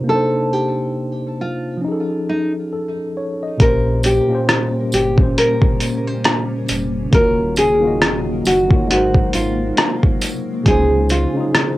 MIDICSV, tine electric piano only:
0, 0, Header, 1, 2, 480
1, 0, Start_track
1, 0, Tempo, 882353
1, 38, Time_signature, 4, 2, 24, 8
1, 6406, End_track
2, 0, Start_track
2, 0, Title_t, "Tine electric piano"
2, 0, Program_c, 0, 4
2, 0, Control_c, 0, 64, 127
2, 0, Note_on_c, 0, 72, 47
2, 2, Note_on_c, 0, 48, 60
2, 21, Note_on_c, 0, 58, 58
2, 41, Note_on_c, 0, 62, 58
2, 43, Control_c, 0, 64, 0
2, 61, Note_on_c, 0, 63, 55
2, 68, Note_off_c, 0, 72, 0
2, 81, Note_on_c, 0, 72, 72
2, 144, Control_c, 0, 64, 127
2, 960, Note_off_c, 0, 48, 0
2, 964, Note_on_c, 0, 53, 62
2, 970, Note_off_c, 0, 58, 0
2, 980, Note_off_c, 0, 62, 0
2, 984, Note_on_c, 0, 61, 58
2, 990, Note_off_c, 0, 63, 0
2, 1001, Note_off_c, 0, 72, 0
2, 1004, Control_c, 0, 64, 0
2, 1004, Note_on_c, 0, 63, 58
2, 1024, Note_on_c, 0, 68, 56
2, 1044, Note_on_c, 0, 69, 66
2, 1102, Control_c, 0, 64, 127
2, 1477, Note_off_c, 0, 69, 0
2, 1481, Note_off_c, 0, 68, 0
2, 1483, Note_on_c, 0, 69, 56
2, 1709, Note_off_c, 0, 69, 0
2, 1724, Note_on_c, 0, 73, 66
2, 1854, Note_off_c, 0, 73, 0
2, 1865, Note_on_c, 0, 75, 62
2, 1921, Note_off_c, 0, 53, 0
2, 1931, Note_off_c, 0, 61, 0
2, 1941, Note_off_c, 0, 63, 0
2, 1944, Note_on_c, 0, 46, 70
2, 1954, Note_on_c, 0, 58, 68
2, 1963, Control_c, 0, 64, 0
2, 1963, Note_on_c, 0, 61, 64
2, 1972, Note_on_c, 0, 67, 66
2, 1983, Note_on_c, 0, 72, 81
2, 2075, Control_c, 0, 64, 127
2, 2089, Note_off_c, 0, 75, 0
2, 2198, Note_off_c, 0, 46, 0
2, 2203, Note_off_c, 0, 58, 0
2, 2208, Note_off_c, 0, 61, 0
2, 2212, Note_off_c, 0, 67, 0
2, 2218, Note_off_c, 0, 72, 0
2, 2325, Note_on_c, 0, 46, 71
2, 2334, Note_on_c, 0, 58, 69
2, 2344, Note_on_c, 0, 61, 67
2, 2353, Note_on_c, 0, 67, 66
2, 2364, Note_on_c, 0, 72, 79
2, 2645, Note_off_c, 0, 46, 0
2, 2650, Note_off_c, 0, 58, 0
2, 2654, Note_off_c, 0, 61, 0
2, 2659, Note_off_c, 0, 67, 0
2, 2665, Note_off_c, 0, 72, 0
2, 2805, Note_on_c, 0, 46, 67
2, 2815, Note_on_c, 0, 58, 64
2, 2824, Note_on_c, 0, 61, 59
2, 2835, Note_on_c, 0, 67, 60
2, 2844, Note_on_c, 0, 72, 75
2, 3458, Note_off_c, 0, 46, 0
2, 3463, Note_off_c, 0, 58, 0
2, 3467, Note_off_c, 0, 61, 0
2, 3473, Note_off_c, 0, 67, 0
2, 3477, Note_off_c, 0, 72, 0
2, 3864, Note_on_c, 0, 51, 72
2, 3874, Note_on_c, 0, 58, 68
2, 3884, Note_on_c, 0, 65, 68
2, 3885, Control_c, 0, 64, 0
2, 3894, Note_on_c, 0, 66, 64
2, 3904, Note_on_c, 0, 73, 82
2, 3980, Control_c, 0, 64, 127
2, 4118, Note_off_c, 0, 51, 0
2, 4123, Note_off_c, 0, 58, 0
2, 4128, Note_off_c, 0, 65, 0
2, 4133, Note_off_c, 0, 66, 0
2, 4138, Note_off_c, 0, 73, 0
2, 4242, Note_on_c, 0, 51, 76
2, 4252, Note_on_c, 0, 58, 67
2, 4262, Note_on_c, 0, 65, 67
2, 4272, Note_on_c, 0, 66, 66
2, 4282, Note_on_c, 0, 75, 81
2, 4564, Note_off_c, 0, 51, 0
2, 4569, Note_off_c, 0, 58, 0
2, 4574, Note_off_c, 0, 65, 0
2, 4578, Note_off_c, 0, 66, 0
2, 4584, Note_off_c, 0, 75, 0
2, 4724, Note_on_c, 0, 51, 69
2, 4734, Note_on_c, 0, 58, 63
2, 4744, Note_on_c, 0, 65, 62
2, 4754, Note_on_c, 0, 66, 67
2, 4764, Note_on_c, 0, 73, 71
2, 4826, Note_on_c, 0, 56, 81
2, 4831, Note_off_c, 0, 51, 0
2, 4836, Note_off_c, 0, 58, 0
2, 4836, Note_on_c, 0, 63, 71
2, 4841, Note_off_c, 0, 65, 0
2, 4843, Control_c, 0, 64, 0
2, 4846, Note_off_c, 0, 66, 0
2, 4847, Note_on_c, 0, 54, 71
2, 4851, Note_off_c, 0, 73, 0
2, 4857, Note_on_c, 0, 70, 71
2, 4867, Note_on_c, 0, 72, 89
2, 4945, Control_c, 0, 64, 127
2, 5608, Note_off_c, 0, 56, 0
2, 5613, Note_off_c, 0, 63, 0
2, 5618, Note_off_c, 0, 54, 0
2, 5623, Note_off_c, 0, 70, 0
2, 5628, Note_off_c, 0, 72, 0
2, 5784, Note_on_c, 0, 49, 74
2, 5793, Note_on_c, 0, 61, 67
2, 5805, Control_c, 0, 64, 0
2, 5805, Note_on_c, 0, 63, 67
2, 5814, Note_on_c, 0, 65, 68
2, 5824, Note_on_c, 0, 72, 85
2, 5913, Control_c, 0, 64, 127
2, 6038, Note_off_c, 0, 49, 0
2, 6043, Note_off_c, 0, 61, 0
2, 6048, Note_off_c, 0, 63, 0
2, 6053, Note_off_c, 0, 65, 0
2, 6058, Note_off_c, 0, 72, 0
2, 6163, Note_on_c, 0, 49, 73
2, 6173, Note_on_c, 0, 61, 71
2, 6183, Note_on_c, 0, 63, 69
2, 6193, Note_on_c, 0, 65, 68
2, 6203, Note_on_c, 0, 68, 84
2, 6406, Note_off_c, 0, 49, 0
2, 6406, Note_off_c, 0, 61, 0
2, 6406, Note_off_c, 0, 63, 0
2, 6406, Note_off_c, 0, 65, 0
2, 6406, Note_off_c, 0, 68, 0
2, 6406, End_track
0, 0, End_of_file